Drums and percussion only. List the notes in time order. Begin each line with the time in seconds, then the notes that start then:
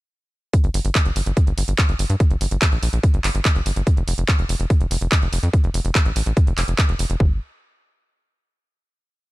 0.53 kick, closed hi-hat
0.64 closed hi-hat
0.74 open hi-hat
0.85 closed hi-hat
0.95 kick, clap, closed hi-hat
1.06 closed hi-hat
1.16 open hi-hat
1.26 closed hi-hat
1.37 kick, closed hi-hat
1.47 closed hi-hat
1.58 open hi-hat
1.68 closed hi-hat
1.78 kick, clap, closed hi-hat
1.89 closed hi-hat
1.99 open hi-hat
2.10 closed hi-hat
2.20 kick, closed hi-hat
2.31 closed hi-hat
2.41 open hi-hat
2.51 closed hi-hat
2.62 kick, clap, closed hi-hat
2.72 closed hi-hat
2.83 open hi-hat
2.93 closed hi-hat
3.03 kick, closed hi-hat
3.14 closed hi-hat
3.24 clap, open hi-hat
3.35 closed hi-hat
3.45 kick, clap, closed hi-hat
3.56 closed hi-hat
3.66 open hi-hat
3.76 closed hi-hat
3.87 kick, closed hi-hat
3.97 closed hi-hat
4.08 open hi-hat
4.18 closed hi-hat
4.28 kick, clap, closed hi-hat
4.39 closed hi-hat
4.49 open hi-hat
4.60 closed hi-hat
4.70 kick, closed hi-hat
4.81 closed hi-hat
4.91 open hi-hat
5.01 closed hi-hat
5.12 kick, clap, closed hi-hat
5.22 closed hi-hat
5.33 open hi-hat
5.43 closed hi-hat
5.53 kick, closed hi-hat
5.64 closed hi-hat
5.74 open hi-hat
5.85 closed hi-hat
5.95 kick, clap, closed hi-hat
6.06 closed hi-hat
6.16 open hi-hat
6.26 closed hi-hat
6.37 kick, closed hi-hat
6.47 closed hi-hat
6.58 clap, open hi-hat
6.68 closed hi-hat
6.78 kick, clap, closed hi-hat
6.89 closed hi-hat
6.99 open hi-hat
7.10 closed hi-hat
7.20 kick